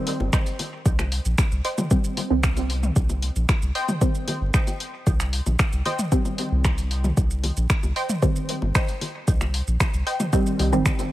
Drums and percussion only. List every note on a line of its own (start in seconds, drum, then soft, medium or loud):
0.07 open hi-hat medium
0.20 low bongo soft
0.33 finger snap medium
0.33 kick loud
0.33 shaker medium
0.46 open hi-hat soft
0.46 shaker soft
0.59 open hi-hat medium
0.59 low bongo soft
0.86 kick loud
0.86 shaker medium
0.99 finger snap soft
0.99 low bongo soft
0.99 shaker soft
1.12 open hi-hat medium
1.25 shaker soft
1.38 finger snap medium
1.38 kick loud
1.38 low bongo soft
1.38 shaker medium
1.52 shaker soft
1.65 open hi-hat medium
1.78 mid tom medium
1.78 low bongo soft
1.78 shaker soft
1.91 kick loud
1.91 shaker medium
2.04 shaker soft
2.17 open hi-hat medium
2.17 low bongo soft
2.43 finger snap medium
2.43 kick loud
2.43 shaker medium
2.57 open hi-hat soft
2.57 low bongo soft
2.57 shaker soft
2.70 open hi-hat medium
2.83 mid tom medium
2.83 shaker soft
2.96 kick loud
2.96 shaker medium
3.09 low bongo soft
3.09 shaker soft
3.22 open hi-hat medium
3.36 shaker soft
3.49 finger snap medium
3.49 kick loud
3.49 low bongo soft
3.49 shaker medium
3.62 shaker soft
3.75 open hi-hat medium
3.88 mid tom medium
3.88 low bongo soft
3.88 shaker soft
4.01 kick loud
4.01 shaker medium
4.15 shaker soft
4.28 open hi-hat medium
4.28 low bongo soft
4.54 finger snap medium
4.54 kick loud
4.54 shaker medium
4.67 open hi-hat soft
4.67 low bongo soft
4.67 shaker soft
4.80 open hi-hat medium
5.07 kick loud
5.07 low bongo soft
5.07 shaker medium
5.20 finger snap soft
5.20 shaker soft
5.33 open hi-hat medium
5.46 low bongo soft
5.46 shaker soft
5.59 finger snap medium
5.59 kick loud
5.59 shaker medium
5.73 shaker soft
5.86 open hi-hat medium
5.86 low bongo soft
5.99 mid tom medium
5.99 shaker soft
6.12 kick loud
6.12 shaker medium
6.25 low bongo soft
6.25 shaker soft
6.38 open hi-hat medium
6.65 finger snap medium
6.65 kick loud
6.65 low bongo soft
6.65 shaker medium
6.78 open hi-hat soft
6.78 shaker soft
6.91 open hi-hat medium
7.04 mid tom medium
7.04 low bongo soft
7.04 shaker soft
7.17 kick loud
7.17 shaker medium
7.30 shaker soft
7.43 open hi-hat medium
7.43 low bongo soft
7.57 shaker soft
7.70 finger snap medium
7.70 kick loud
7.70 shaker medium
7.83 low bongo soft
7.83 shaker soft
7.96 open hi-hat medium
8.09 mid tom medium
8.09 shaker soft
8.22 kick loud
8.22 low bongo soft
8.22 shaker medium
8.36 shaker soft
8.49 open hi-hat medium
8.62 low bongo soft
8.75 finger snap medium
8.75 kick loud
8.75 shaker medium
8.88 open hi-hat soft
8.88 shaker soft
9.01 open hi-hat medium
9.01 low bongo soft
9.28 kick loud
9.28 shaker medium
9.41 finger snap soft
9.41 low bongo soft
9.41 shaker soft
9.54 open hi-hat medium
9.67 shaker soft
9.80 finger snap medium
9.80 kick loud
9.80 low bongo soft
9.80 shaker medium
9.94 shaker soft
10.07 open hi-hat medium
10.20 mid tom loud
10.20 low bongo soft
10.20 shaker soft
10.33 kick loud
10.33 shaker medium
10.46 shaker soft
10.59 open hi-hat medium
10.59 low bongo soft
10.72 mid tom medium
10.72 shaker soft
10.86 finger snap medium
10.86 kick loud
10.86 shaker medium
10.99 open hi-hat soft
10.99 low bongo soft
10.99 shaker soft